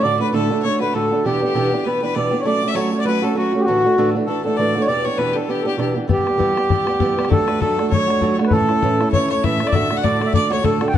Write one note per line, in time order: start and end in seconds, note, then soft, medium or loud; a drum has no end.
0.02 0.20 D2 medium
0.02 0.20 A2 medium
0.02 0.20 D3 medium
0.02 0.20 A3 medium
0.02 0.19 D4 medium
0.02 0.19 F#4 medium
0.02 0.20 D5 loud
0.02 0.19 D5 medium
0.20 0.32 D3 soft
0.20 0.33 A3 soft
0.20 0.33 D4 soft
0.20 0.33 F#4 soft
0.20 0.32 B4 medium
0.20 0.34 B4 medium
0.33 0.50 D2 medium
0.33 0.50 A2 medium
0.33 0.50 D3 medium
0.33 0.51 A3 medium
0.33 0.50 D4 medium
0.33 0.49 F#4 medium
0.33 0.61 A4 medium
0.33 0.64 A4 medium
0.50 0.62 D3 soft
0.50 0.63 A3 soft
0.50 0.63 D4 medium
0.50 0.63 F#4 soft
0.62 0.81 D3 medium
0.62 0.81 A3 medium
0.62 0.80 D4 medium
0.62 0.79 F#4 medium
0.62 0.79 C#5 medium
0.80 0.93 D3 soft
0.80 0.94 A3 soft
0.80 0.94 D4 soft
0.80 0.93 F#4 medium
0.80 0.95 B4 medium
0.80 0.94 B4 medium
0.93 1.11 D2 medium
0.93 1.11 A2 medium
0.93 1.11 D3 medium
0.93 1.12 A3 medium
0.93 1.11 D4 medium
0.93 1.10 F#4 medium
0.93 1.24 A4 medium
0.93 1.25 A4 loud
1.11 1.25 D3 soft
1.11 1.25 A3 soft
1.11 1.24 D4 soft
1.11 1.24 F#4 medium
1.25 1.42 E2 medium
1.25 1.42 B2 medium
1.25 1.42 E3 medium
1.25 1.42 B3 medium
1.25 1.41 D4 medium
1.25 1.45 G4 medium
1.25 1.87 G4 loud
1.25 1.40 G4 medium
1.41 1.54 E3 soft
1.41 1.55 B3 soft
1.41 1.55 D4 soft
1.41 1.54 G4 soft
1.41 1.64 G4 medium
1.41 1.47 A4 medium
1.54 1.72 E2 medium
1.54 1.72 B2 medium
1.54 1.72 E3 medium
1.54 1.72 B3 medium
1.54 1.72 D4 medium
1.54 1.70 G4 medium
1.63 1.67 F#4 medium
1.63 1.86 G4 medium
1.72 1.84 E3 soft
1.72 1.85 B3 soft
1.72 1.85 D4 soft
1.72 1.85 G4 medium
1.84 2.02 E3 medium
1.84 2.02 B3 medium
1.84 2.01 D4 medium
1.84 2.01 B4 medium
1.84 2.02 B4 medium
1.88 2.01 G4 medium
2.02 2.14 E3 soft
2.02 2.15 B3 soft
2.02 2.15 D4 soft
2.02 2.15 G4 medium
2.02 2.16 B4 medium
2.14 2.32 E2 medium
2.14 2.32 B2 medium
2.14 2.33 E3 medium
2.14 2.32 B3 medium
2.14 2.31 D4 medium
2.14 2.30 G4 medium
2.14 2.44 D5 medium
2.14 2.40 D5 medium
2.31 2.44 E3 soft
2.31 2.45 B3 medium
2.31 2.45 D4 medium
2.31 2.45 G4 medium
2.40 2.46 C#5 medium
2.44 2.62 F#3 medium
2.44 2.63 A3 medium
2.44 2.63 C#4 medium
2.44 2.61 F#4 medium
2.44 2.70 D5 medium
2.44 2.71 D5 loud
2.62 2.74 A3 soft
2.62 2.75 C#4 soft
2.62 2.75 F#4 soft
2.68 2.77 E5 medium
2.68 2.75 E5 medium
2.74 2.92 F#3 medium
2.74 2.93 A3 medium
2.74 2.93 C#4 medium
2.74 2.91 F#4 medium
2.74 3.00 C#5 medium
2.74 2.99 C#5 medium
2.92 3.05 A3 soft
2.92 3.07 C#4 soft
2.92 3.06 F#4 soft
2.99 3.06 D5 medium
3.05 3.23 F#3 medium
3.05 3.24 A3 medium
3.05 3.22 C#4 medium
3.05 3.21 F#4 medium
3.05 3.22 B4 loud
3.05 3.26 B4 medium
3.22 3.34 A3 soft
3.22 3.35 C#4 soft
3.22 3.36 F#4 medium
3.22 3.36 A4 medium
3.22 3.37 A4 medium
3.35 3.53 F#3 medium
3.35 3.53 A3 medium
3.35 3.53 C#4 medium
3.35 3.62 F#4 medium
3.35 3.51 F#4 medium
3.35 3.60 F#4 medium
3.53 3.67 A3 soft
3.53 3.67 C#4 medium
3.53 3.66 F#4 medium
3.59 3.66 G4 medium
3.65 3.84 D2 medium
3.65 3.85 A2 medium
3.65 3.85 E3 medium
3.65 3.85 A3 medium
3.65 3.84 D4 medium
3.65 4.10 F#4 loud
3.65 4.12 F#4 medium
3.69 3.83 F#4 medium
3.84 3.97 E3 soft
3.84 3.97 A3 soft
3.84 3.98 D4 soft
3.84 3.97 F#4 medium
3.98 4.15 D2 medium
3.98 4.15 A2 medium
3.98 4.15 E3 medium
3.98 4.15 A3 medium
3.98 4.15 D4 loud
3.98 4.14 F#4 medium
4.15 4.26 E3 soft
4.15 4.27 A3 medium
4.15 4.28 D4 medium
4.15 4.28 F#4 medium
4.27 4.45 E3 medium
4.27 4.45 A3 medium
4.27 4.44 D4 medium
4.27 4.43 F#4 medium
4.27 4.42 A4 medium
4.27 4.44 A4 medium
4.44 4.58 E3 soft
4.44 4.59 A3 soft
4.44 4.58 D4 medium
4.44 4.58 F#4 soft
4.44 4.56 A4 medium
4.44 4.59 A4 medium
4.56 4.75 D2 medium
4.56 4.76 A2 medium
4.56 4.76 E3 medium
4.56 4.76 A3 medium
4.56 4.75 D4 medium
4.56 4.82 D5 loud
4.56 4.83 D5 medium
4.60 4.74 F#4 medium
4.75 4.88 E3 soft
4.75 4.89 A3 medium
4.75 4.88 D4 soft
4.75 4.88 F#4 soft
4.81 4.88 C#5 medium
4.81 4.87 C#5 medium
4.87 5.05 E2 medium
4.87 5.06 B2 medium
4.87 5.06 E3 medium
4.87 5.05 B3 medium
4.87 5.05 D4 medium
4.87 5.03 G4 medium
4.87 5.06 D5 loud
4.87 5.06 D5 medium
5.04 5.17 E3 soft
5.04 5.18 B3 soft
5.04 5.18 D4 soft
5.04 5.18 G4 medium
5.04 5.18 C#5 medium
5.04 5.20 C#5 medium
5.17 5.36 E2 medium
5.17 5.36 B2 medium
5.17 5.36 E3 medium
5.17 5.36 B3 medium
5.17 5.34 D4 medium
5.17 5.33 G4 medium
5.17 5.36 B4 medium
5.17 5.35 B4 medium
5.33 5.47 B3 soft
5.33 5.49 D4 medium
5.33 5.38 G4 soft
5.33 5.48 G4 soft
5.33 5.49 A4 medium
5.33 5.52 A4 medium
5.38 5.46 E3 soft
5.47 5.66 E3 medium
5.47 5.66 B3 medium
5.47 5.65 D4 medium
5.47 5.60 G4 medium
5.47 5.64 G4 medium
5.47 5.66 G4 medium
5.61 5.78 G4 medium
5.61 5.66 A4 medium
5.66 5.77 E3 soft
5.66 5.77 B3 soft
5.66 5.78 D4 medium
5.66 5.75 G4 medium
5.66 5.79 G4 medium
5.77 5.96 E2 medium
5.77 5.96 B2 medium
5.77 5.96 E3 medium
5.77 5.95 B3 medium
5.77 5.94 D4 medium
5.77 5.80 F#4 medium
5.77 5.93 G4 medium
5.77 5.96 G4 medium
5.94 6.06 E3 soft
5.94 6.08 B3 soft
5.94 6.09 D4 medium
5.94 6.09 G4 medium
6.08 6.26 E3 medium
6.08 6.27 G3 medium
6.08 6.27 B3 medium
6.08 6.24 G4 medium
6.08 7.32 G4 medium
6.08 bodhran medium
6.12 7.29 G4 loud
6.18 bodhran soft
6.26 6.37 G3 soft
6.26 6.38 B3 soft
6.26 6.39 G4 medium
6.26 bodhran medium
6.38 6.56 E3 medium
6.38 6.57 G3 medium
6.38 6.56 B3 medium
6.38 6.54 G4 medium
6.38 bodhran medium
6.56 6.69 G3 soft
6.56 6.69 B3 medium
6.56 6.70 G4 medium
6.56 bodhran medium
6.69 6.87 E3 medium
6.69 6.88 G3 medium
6.69 6.86 B3 medium
6.69 6.85 G4 medium
6.69 bodhran medium
6.86 6.99 G3 soft
6.86 7.00 B3 medium
6.86 7.00 G4 medium
6.86 bodhran medium
7.00 7.18 E3 medium
7.00 7.17 G3 medium
7.00 7.16 B3 medium
7.00 7.15 G4 medium
7.00 bodhran medium
7.16 7.29 G3 medium
7.16 7.30 B3 medium
7.16 7.30 G4 medium
7.16 bodhran medium
7.25 7.47 F#3 medium
7.25 bodhran medium
7.29 7.48 A3 medium
7.29 7.47 D4 medium
7.29 7.46 F#4 medium
7.29 7.49 A4 medium
7.29 7.60 A4 loud
7.29 bodhran medium
7.41 bodhran soft
7.47 7.60 A3 soft
7.47 7.61 D4 soft
7.47 7.61 F#4 soft
7.47 7.62 B4 medium
7.47 bodhran medium
7.60 7.78 F#3 medium
7.60 7.79 A3 medium
7.60 7.78 D4 medium
7.60 7.77 F#4 medium
7.60 7.89 A4 medium
7.60 7.93 A4 loud
7.60 bodhran medium
7.78 7.90 A3 soft
7.78 7.91 D4 soft
7.78 7.91 F#4 medium
7.78 bodhran medium
7.90 8.08 F#3 medium
7.90 8.09 A3 medium
7.90 8.08 D4 medium
7.90 8.06 F#4 medium
7.90 8.35 C#5 medium
7.90 8.37 C#5 loud
7.90 bodhran medium
8.07 8.20 A3 soft
8.07 8.22 D4 soft
8.07 8.21 F#4 medium
8.07 bodhran soft
8.21 8.39 F#3 medium
8.21 8.39 A3 medium
8.21 8.39 D4 medium
8.21 8.37 F#4 medium
8.21 bodhran medium
8.38 8.51 A3 medium
8.38 8.53 D4 medium
8.38 8.52 F#4 medium
8.38 bodhran medium
8.45 8.53 B4 medium
8.45 bodhran medium
8.51 8.69 A2 medium
8.51 8.70 E3 medium
8.51 8.70 A3 medium
8.51 8.69 C#4 medium
8.51 8.68 E4 medium
8.51 9.09 A4 loud
8.51 9.09 A4 medium
8.51 bodhran medium
8.61 bodhran soft
8.69 8.82 A3 soft
8.69 8.83 C#4 soft
8.69 8.83 E4 medium
8.69 bodhran medium
8.82 9.00 A2 medium
8.82 9.00 E3 medium
8.82 9.01 A3 medium
8.82 9.00 C#4 medium
8.82 8.99 E4 medium
8.82 bodhran medium
9.00 9.14 A3 soft
9.00 9.14 C#4 medium
9.00 9.13 E4 medium
9.00 bodhran medium
9.12 9.31 E3 medium
9.12 9.31 A3 medium
9.12 9.30 C#4 medium
9.12 9.29 C#5 loud
9.12 9.30 C#5 loud
9.12 bodhran medium
9.16 9.29 E4 medium
9.30 9.43 A3 soft
9.30 9.44 C#4 soft
9.30 9.43 E4 soft
9.30 9.45 C#5 medium
9.30 9.44 C#5 loud
9.30 bodhran medium
9.44 9.61 A2 medium
9.44 9.61 E3 medium
9.44 9.61 A3 medium
9.44 9.61 C#4 medium
9.44 9.59 E4 medium
9.44 9.68 E5 medium
9.44 9.69 E5 medium
9.44 bodhran medium
9.60 9.73 A3 soft
9.60 9.74 C#4 medium
9.60 9.73 E4 medium
9.60 bodhran medium
9.67 9.74 D5 medium
9.67 bodhran medium
9.72 9.90 D2 medium
9.72 9.91 A2 medium
9.72 9.91 D3 medium
9.72 9.91 A3 medium
9.72 9.90 D4 medium
9.72 9.89 F#4 medium
9.72 9.97 E5 loud
9.72 9.98 E5 medium
9.72 bodhran medium
9.82 bodhran soft
9.90 10.02 D3 soft
9.90 10.04 A3 soft
9.90 10.04 D4 soft
9.90 10.03 F#4 medium
9.90 bodhran medium
9.97 10.05 F#5 medium
9.97 10.04 F#5 medium
10.03 10.21 D2 medium
10.03 10.21 A2 medium
10.03 10.21 D3 medium
10.03 10.21 A3 medium
10.03 10.20 D4 medium
10.03 10.19 F#4 medium
10.03 10.28 D5 loud
10.03 10.33 D5 medium
10.03 bodhran medium
10.20 10.32 D3 soft
10.20 10.33 A3 soft
10.20 10.33 D4 soft
10.20 10.34 F#4 medium
10.20 bodhran medium
10.26 10.33 E5 medium
10.33 10.51 D3 medium
10.33 10.51 A3 medium
10.33 10.50 D4 medium
10.33 10.49 F#4 medium
10.33 10.52 D5 loud
10.33 10.50 D5 medium
10.33 bodhran medium
10.50 10.62 D3 soft
10.50 10.63 A3 soft
10.50 10.63 D4 soft
10.50 10.63 F#4 medium
10.50 10.67 C#5 medium
10.50 10.64 C#5 medium
10.50 bodhran medium
10.62 10.80 D2 medium
10.62 10.81 A2 medium
10.62 10.81 D3 medium
10.62 10.81 A3 medium
10.62 10.81 D4 medium
10.62 10.80 F#4 medium
10.62 10.87 A4 medium
10.62 10.89 A4 medium
10.62 bodhran medium
10.81 10.94 D3 soft
10.81 10.94 A3 soft
10.81 10.94 D4 medium
10.81 10.94 F#4 medium
10.81 bodhran medium
10.88 10.94 G5 medium
10.88 bodhran medium
10.93 10.98 E2 medium
10.93 10.98 B2 medium
10.93 10.98 E3 medium
10.93 10.98 B3 medium
10.93 10.98 D4 medium
10.93 10.98 F#5 loud
10.93 10.98 F#5 medium
10.93 bodhran medium